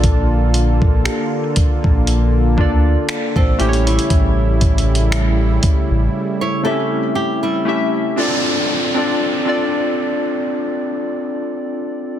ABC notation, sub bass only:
X:1
M:4/4
L:1/16
Q:"Swing 16ths" 1/4=59
K:Dm
V:1 name="Sub bass" clef=bass
B,,,6 B,,, B,,,3 D,,2 z B,,, A,,,2 | A,,,6 A,,, A,,, z8 | z16 |]